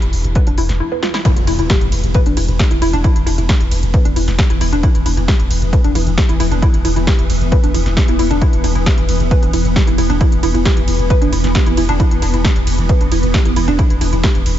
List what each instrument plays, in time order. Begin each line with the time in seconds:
Already playing: synth drone E3 B3
0.02 sub bass E1, closed hi-hat
0.13 sub bass E1, open hi-hat
0.24 sub bass E1, closed hi-hat
0.35 synth arpeggio sound B4, kick, closed hi-hat
0.47 sub bass E1, synth arpeggio sound D4, closed hi-hat
0.58 sub bass E1, synth arpeggio sound E4, open hi-hat
0.69 sub bass E1, snare, closed hi-hat
0.80 synth arpeggio sound E4
0.92 synth arpeggio sound B4
1.03 synth arpeggio sound F4, snare
1.14 synth arpeggio sound E4, snare
1.25 synth drone E3 B3, synth arpeggio sound E4, kick, closed hi-hat, ride, impact
1.37 sub bass E1, closed hi-hat
1.47 sub bass E1, synth arpeggio sound E4, open hi-hat, ride
1.59 sub bass E1, synth arpeggio sound E4, closed hi-hat
1.70 synth arpeggio sound G4, kick, snare, closed hi-hat, ride
1.81 sub bass E1, closed hi-hat
1.92 sub bass E1, open hi-hat, ride
2.04 sub bass E1, closed hi-hat
2.15 synth arpeggio sound B4, kick, closed hi-hat, ride
2.26 sub bass E1, synth arpeggio sound D4, closed hi-hat
2.37 sub bass E1, synth arpeggio sound E4, open hi-hat, ride
2.48 sub bass E1, closed hi-hat
2.59 synth arpeggio sound G4, kick, snare, closed hi-hat, ride
2.71 sub bass E1, synth arpeggio sound E4, closed hi-hat
2.82 sub bass E1, synth arpeggio sound E4, open hi-hat, ride
2.93 sub bass E1, synth arpeggio sound D4, closed hi-hat
3.04 synth arpeggio sound E4, kick, closed hi-hat, ride
3.16 sub bass E1, closed hi-hat
3.26 sub bass E1, synth arpeggio sound E4, open hi-hat, ride
3.38 sub bass E1, synth arpeggio sound E4, closed hi-hat
3.49 synth arpeggio sound G4, kick, snare, closed hi-hat, ride
3.61 sub bass E1, closed hi-hat
3.71 sub bass E1, open hi-hat, ride
3.83 sub bass E1, closed hi-hat
3.94 synth arpeggio sound B4, kick, closed hi-hat, ride
4.05 sub bass E1, synth arpeggio sound D4, closed hi-hat
4.16 sub bass E1, synth arpeggio sound E4, open hi-hat, ride
4.28 sub bass E1, snare, closed hi-hat
4.39 synth arpeggio sound G4, kick, snare, closed hi-hat, ride
4.50 sub bass E1, synth arpeggio sound E4, closed hi-hat
4.61 sub bass E1, synth arpeggio sound E4, open hi-hat, ride
4.72 sub bass E1, synth arpeggio sound D4, closed hi-hat
4.83 synth arpeggio sound E4, kick, closed hi-hat, ride
4.95 sub bass E1, closed hi-hat
5.06 sub bass E1, synth arpeggio sound E4, open hi-hat, ride
5.17 sub bass E1, synth arpeggio sound E4, closed hi-hat
5.28 synth arpeggio sound G4, kick, snare, closed hi-hat, ride
5.39 sub bass E1, closed hi-hat
5.50 sub bass E1, open hi-hat, ride
5.62 sub bass E1, closed hi-hat
5.73 synth arpeggio sound B4, kick, closed hi-hat, ride
5.84 sub bass E1, synth arpeggio sound D4, closed hi-hat
5.95 sub bass E1, synth arpeggio sound E4, open hi-hat, ride
6.07 sub bass E1, closed hi-hat
6.18 synth arpeggio sound G4, kick, snare, closed hi-hat, ride
6.29 sub bass E1, synth arpeggio sound E4, closed hi-hat
6.40 sub bass E1, synth arpeggio sound E4, open hi-hat, ride
6.51 sub bass E1, synth arpeggio sound D4, closed hi-hat
6.62 synth arpeggio sound E4, kick, closed hi-hat, ride
6.74 sub bass E1, closed hi-hat
6.85 sub bass E1, synth arpeggio sound E4, open hi-hat, ride
6.96 sub bass E1, synth arpeggio sound E4, closed hi-hat
7.07 synth arpeggio sound G4, kick, snare, closed hi-hat, ride
7.19 sub bass E1, closed hi-hat
7.30 sub bass E1, open hi-hat, ride
7.41 sub bass E1, closed hi-hat
7.52 synth arpeggio sound B4, kick, closed hi-hat, ride
7.63 sub bass E1, synth arpeggio sound D4, closed hi-hat
7.74 sub bass E1, synth arpeggio sound E4, open hi-hat, ride
7.86 sub bass E1, snare, closed hi-hat
7.97 synth arpeggio sound G4, kick, snare, closed hi-hat, ride
8.08 sub bass E1, synth arpeggio sound E4, closed hi-hat
8.19 sub bass E1, synth arpeggio sound E4, open hi-hat, ride
8.31 sub bass E1, synth arpeggio sound D4, closed hi-hat
8.42 synth arpeggio sound E4, kick, closed hi-hat, ride
8.53 sub bass E1, closed hi-hat
8.64 sub bass E1, synth arpeggio sound E4, open hi-hat, ride
8.75 sub bass E1, synth arpeggio sound E4, closed hi-hat
8.86 synth arpeggio sound G4, kick, snare, closed hi-hat, ride
8.98 sub bass E1, closed hi-hat
9.09 sub bass E1, open hi-hat, ride
9.20 sub bass E1, closed hi-hat
9.31 synth arpeggio sound B4, kick, closed hi-hat, ride
9.43 sub bass E1, synth arpeggio sound D4, closed hi-hat
9.53 sub bass E1, synth arpeggio sound E4, open hi-hat, ride
9.65 sub bass E1, closed hi-hat
9.76 synth arpeggio sound G4, kick, snare, closed hi-hat, ride
9.87 sub bass E1, synth arpeggio sound E4, closed hi-hat
9.98 sub bass E1, synth arpeggio sound E4, open hi-hat, ride
10.10 sub bass E1, synth arpeggio sound D4, closed hi-hat
10.21 synth arpeggio sound E4, kick, closed hi-hat, ride
10.32 sub bass E1, closed hi-hat
10.43 sub bass E1, synth arpeggio sound E4, open hi-hat, ride
10.54 sub bass E1, synth arpeggio sound E4, closed hi-hat
10.65 synth arpeggio sound G4, kick, snare, closed hi-hat, ride
10.77 sub bass E1, closed hi-hat
10.88 sub bass E1, open hi-hat, ride
10.99 sub bass E1, closed hi-hat
11.10 synth arpeggio sound B4, kick, closed hi-hat, ride
11.22 sub bass E1, synth arpeggio sound D4, closed hi-hat
11.32 sub bass E1, synth arpeggio sound E4, open hi-hat, ride
11.44 sub bass E1, snare, closed hi-hat
11.55 synth arpeggio sound G4, kick, snare, closed hi-hat, ride
11.66 sub bass E1, synth arpeggio sound E4, closed hi-hat
11.77 sub bass E1, synth arpeggio sound E4, open hi-hat, ride
11.89 sub bass E1, synth arpeggio sound D4, closed hi-hat
12.00 synth arpeggio sound E4, kick, closed hi-hat, ride
12.11 sub bass E1, closed hi-hat
12.22 sub bass E1, synth arpeggio sound E4, open hi-hat, ride
12.34 sub bass E1, synth arpeggio sound E4, closed hi-hat
12.45 synth arpeggio sound G4, kick, snare, closed hi-hat, ride
12.56 sub bass E1, closed hi-hat
12.67 sub bass E1, open hi-hat, ride
12.78 sub bass E1, closed hi-hat
12.89 synth arpeggio sound B4, kick, closed hi-hat, ride
13.01 sub bass E1, synth arpeggio sound D4, closed hi-hat
13.12 sub bass E1, synth arpeggio sound E4, open hi-hat, ride
13.23 sub bass E1, closed hi-hat
13.34 synth arpeggio sound G4, kick, snare, closed hi-hat, ride
13.45 sub bass E1, synth arpeggio sound E4, closed hi-hat
13.56 sub bass E1, synth arpeggio sound E4, open hi-hat, ride
13.68 sub bass E1, synth arpeggio sound D4, closed hi-hat
13.79 synth arpeggio sound E4, kick, closed hi-hat, ride
13.90 sub bass E1, closed hi-hat
14.01 sub bass E1, synth arpeggio sound E4, open hi-hat, ride
14.13 sub bass E1, synth arpeggio sound E4, closed hi-hat
14.23 synth arpeggio sound G4, kick, snare, closed hi-hat, ride
14.35 sub bass E1, closed hi-hat
14.46 sub bass E1, open hi-hat, ride